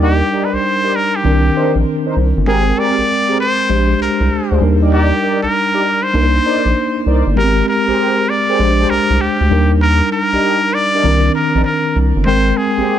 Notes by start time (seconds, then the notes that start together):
Already playing: D#2 G3 D4 D#4 A#4
0.02 D#4 G4 A#4 D5
0.33 D#4 G4 A#4 D5
0.45 B4
0.53 C2 C5
0.84 D#4 G4 A#4 D5
0.96 A#4
1.16 G4
1.24 C2 D#3 C4 D4 A#4
1.56 D4 D#4 A#4 C5
1.76 A#1
2.06 D4 D#4 A#4 C5
2.17 C2
2.37 G1
2.47 G#1 G#3 C4 G4 G#4 A#4 G5
2.78 C4 G4 G#4 A#4 D5
2.98 A#1
3.29 C4 G4 G#4 A#4
3.40 C5
3.69 A#1 G#3 D4 G4 C5
4.00 C2 A#4
4.21 C2
4.31 D2
4.51 D2 D4 G4 G#4 C5
4.61 D#2 G3 D4 D#4 A#4
4.82 D#4 G4 A#4 D5
4.92 D#4 G4 A#4 D5
5.23 D#4 G4 A#4 D5
5.43 C2 A#4
5.74 D#4 G4 A#4 D5
6.03 C5
6.13 C2 A#3 D4 D#4 A#4
6.45 D#4 A#4 C5 D5
6.66 A#1
7.06 C2 D#4 A#4 C5 D5
7.27 G1
7.36 G#1 G#3 B3 G4 A#4
7.43 C4
7.68 A#4
7.88 A#1 G4 G#4 A#4 C5
7.99 G4 G#4 A#4 C5
8.29 D5
8.49 G4 G#4 A#4 C5
8.59 A#1 G#3 D4 G4 C5
8.79 D4 G4 G#4 C5
8.90 C2 A#4
9.10 C2
9.21 D2 G4
9.41 D2
9.50 D#2 G3 D4 D#4 A#4
9.82 A#4
10.12 A#4
10.33 C2 D4 D#4 G4 A#4
10.43 D4 D#4 G4 A#4
10.74 D5
10.94 D4 D#4 G4 A#4
11.03 C2 D#3 C4 D4 A#4
11.35 A#4
11.55 A#1 C4 D4 D#4 A#4
11.65 A#4
11.96 C2
12.16 G1
12.26 G#1 G#3 C4 A#4 C5 G5
12.57 G#4
12.77 A#1 G#3 A#3 C4 G4
12.88 G#3 A#3 C4 G4